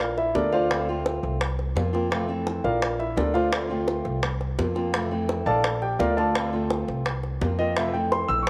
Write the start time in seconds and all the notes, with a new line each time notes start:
Already playing: A#1 F4 A#4 D5 F5
0.00 muted steel-string acoustic guitar stroke, high bongo
0.18 E4 E5, high bongo
0.34 D2 F3 A3 D4 F4 A4 A#4 D5, high bongo, low bongo
0.52 A3 D4 F4 C5 D5 F5, high bongo
0.70 D3 A3 C4 F4, high bongo
0.89 A3 C4 F4
1.06 high bongo
1.23 C2, high bongo
1.41 muted steel-string acoustic guitar stroke, high bongo
1.59 high bongo
1.75 F2 F3 A#3 C4 F4, high bongo, low bongo
1.93 F3 A#3 C4 F4, high bongo
2.10 C3 E3 A3 C4 F4, high bongo
2.28 E3 A3 C4
2.47 high bongo
2.64 A#1 F4 A#4 D5 F5, high bongo
2.81 muted steel-string acoustic guitar stroke, high bongo
2.99 E4 E5, high bongo
3.16 D2 F3 A3 D4 F4 A4 A#4 D5, high bongo, low bongo
3.34 A3 D4 F4 C5 D5 F5, high bongo
3.52 D3 A3 C4 F4, high bongo
3.70 A3 C4 F4
3.88 high bongo
4.05 C2, high bongo
4.22 muted steel-string acoustic guitar stroke, high bongo
4.41 high bongo
4.58 F2 F3 A#3 C4 F4, high bongo, low bongo
4.75 F3 A#3 C4 F4, high bongo
4.93 C3 E3 A3 C4 F4, high bongo
5.11 E3 A3 C4
5.29 high bongo
5.46 A#1 A4 D5 F5 A5, high bongo
5.64 muted steel-string acoustic guitar stroke, high bongo
5.82 G4 G5, high bongo
5.99 D2 F3 A3 D4 F4 A#4 D5 F5, high bongo, low bongo
6.17 A3 D4 F4 A4 D5 F5 A5, high bongo
6.35 D3 A3 C4 F4, high bongo
6.53 A3 C4 F4
6.70 high bongo
6.88 C2, high bongo
7.05 muted steel-string acoustic guitar stroke, high bongo
7.23 high bongo
7.41 F2 F3 A#3 C4 F4, high bongo, low bongo
7.58 F3 A#3 C4 F4 D#5, high bongo
7.76 C3 E3 A3 C4 F4 E5, high bongo
7.93 E3 A3 C4 G5
8.12 C6, high bongo
8.29 A#1 E6, high bongo
8.43 C#6, muted steel-string acoustic guitar stroke